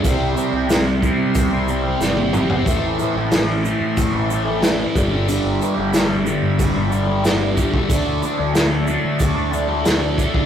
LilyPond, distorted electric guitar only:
\new Staff \with { instrumentName = "Distorted electric guitar" } { \clef bass \time 4/4 \key g \major \tempo 4 = 92 <c g c'>8 <c g c'>16 <g c'>16 <c g c'>8 <c g c'>8. <g c'>16 <c g c'>16 <g c'>16 <c g c'>8 <c g c'>16 <g c'>16 | <a, e a>8 <a, e a>16 <e a>16 <a, e a>8 <a, e a>8. <e a>16 <a, e a>16 <e a>16 <a, e a>8 <g, d g>16 <d g>16 | <g, d g>8 <g, d g>16 <d g>16 <g, d g>8 <g, d g>8. <d g>16 <g, d g>16 <d g>16 <g, d g>8 <g, d g>16 <d g>16 | <d a d'>8 <d a d'>16 <a d'>16 <d a d'>8 <d a d'>8. <a d'>16 <d a d'>16 <a d'>16 <d a d'>8 <d a d'>16 <a d'>16 | }